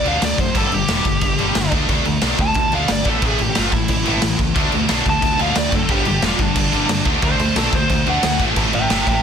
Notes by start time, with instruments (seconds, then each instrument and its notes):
0.05 picked electric bass D2, overdriven electric guitar D3 A3 D4, lead electric guitar F5, crash
0.21 picked electric bass D2, overdriven electric guitar D3 A3, lead electric guitar D5, snare, crash
0.38 picked electric bass F#2, overdriven electric guitar D3 A3, lead electric guitar C5, kick, crash
0.54 picked electric bass G1, overdriven electric guitar G2 D3 G3, lead electric guitar A4, kick, crash
0.71 picked electric bass G1, overdriven electric guitar G2 D3, lead electric guitar G4, crash
0.88 picked electric bass E1, overdriven electric guitar G2 D3 G3, snare, crash
1.05 picked electric bass G1, overdriven electric guitar G2 D3, kick, crash
1.21 picked electric bass G1, overdriven electric guitar G2 D3, kick, crash
1.38 picked electric bass G1, overdriven electric guitar G2 D3 G3, crash
1.55 picked electric bass G1, overdriven electric guitar G2 D3, snare, crash
1.72 picked electric bass D2, overdriven electric guitar D3 A3 D4, kick, crash
1.88 picked electric bass D2, overdriven electric guitar D3 A3 D4, kick, crash
2.05 picked electric bass D2, overdriven electric guitar D3 A3, crash
2.21 picked electric bass B1, overdriven electric guitar D3 A3 D4, snare, crash
2.38 picked electric bass D2, overdriven electric guitar D3 A3, lead electric guitar A5, kick, crash
2.54 picked electric bass D2, overdriven electric guitar D3 A3, kick, crash
2.72 picked electric bass D2, overdriven electric guitar D3 A3 D4, lead electric guitar F5, crash
2.88 picked electric bass G1, overdriven electric guitar D3 A3, lead electric guitar D5, snare, crash
3.04 picked electric bass A1, overdriven electric guitar A2 E3 A3, kick, crash
3.09 lead electric guitar A4
3.22 picked electric bass A1, overdriven electric guitar A2 E3 A3, lead electric guitar G#4, kick, crash
3.38 picked electric bass A1, overdriven electric guitar A2 E3, lead electric guitar G4, crash
3.55 picked electric bass G1, overdriven electric guitar A2 E3 A3, lead electric guitar F4, snare, crash
3.72 picked electric bass A1, overdriven electric guitar A2 E3, lead electric guitar E4, kick, crash
3.88 picked electric bass A1, overdriven electric guitar A2 E3, kick, crash
4.04 picked electric bass A1, overdriven electric guitar A2 E3 A3, crash
4.22 picked electric bass A1, overdriven electric guitar A2 E3, snare, crash
4.37 picked electric bass C#2, overdriven electric guitar A2 E3, kick, crash
4.55 picked electric bass D2, overdriven electric guitar D3 A3 D4, distorted electric guitar F#3, kick, crash
4.72 picked electric bass D2, overdriven electric guitar D3 A3, crash
4.88 picked electric bass B1, overdriven electric guitar D3 A3 D4, snare, crash
5.05 picked electric bass D2, overdriven electric guitar D3 A3, kick, crash
5.10 lead electric guitar A5
5.21 picked electric bass D2, overdriven electric guitar D3 A3, kick, crash
5.39 picked electric bass D2, overdriven electric guitar D3 A3 D4, lead electric guitar F5, crash
5.55 picked electric bass D2, overdriven electric guitar D3 A3, lead electric guitar D5, snare, crash
5.72 picked electric bass F#2, overdriven electric guitar D3 A3, lead electric guitar A4, kick, crash
5.89 picked electric bass G1, overdriven electric guitar G2 D3 G3, distorted electric guitar B3 D4, lead electric guitar G4, kick, crash
6.05 picked electric bass G1, overdriven electric guitar G2 D3, lead electric guitar G4, crash
6.22 picked electric bass E1, overdriven electric guitar G2 D3 G3, lead electric guitar F4, snare, crash
6.39 picked electric bass G1, overdriven electric guitar G2 D3, lead electric guitar D4, kick, crash
6.55 picked electric bass G1, overdriven electric guitar G2 D3, kick, crash
6.72 picked electric bass G1, overdriven electric guitar G2 D3 G3, crash
6.88 picked electric bass G1, overdriven electric guitar G2 D3, snare, crash
7.05 picked electric bass D2, overdriven electric guitar D3 A3 D4, distorted electric guitar F#3, kick, crash
7.22 picked electric bass D2, overdriven electric guitar D3 A3 D4, lead electric guitar C5, kick, crash
7.39 picked electric bass D2, overdriven electric guitar D3 A3, crash
7.56 picked electric bass B1, overdriven electric guitar D3 A3 D4, lead electric guitar A4, snare, crash
7.72 picked electric bass D2, overdriven electric guitar D3 A3, lead electric guitar C5, kick, crash
7.90 picked electric bass D2, overdriven electric guitar D3 A3, kick, crash
8.06 picked electric bass D2, overdriven electric guitar D3 A3 D4, lead electric guitar F#5, crash
8.23 picked electric bass D2, overdriven electric guitar D3 A3, snare, crash
8.39 picked electric bass A1, overdriven electric guitar A2 E3 A3, distorted electric guitar C#4 E4, kick, crash
8.56 picked electric bass A1, overdriven electric guitar A2 E3 A3, kick, crash
8.73 picked electric bass A1, overdriven electric guitar A2 E3, lead electric guitar E5 G5, crash
8.90 picked electric bass G1, overdriven electric guitar A2 E3 A3, lead electric guitar E5 G5, snare, crash
9.07 picked electric bass A1, overdriven electric guitar A2 E3, lead electric guitar E5 G5, kick, crash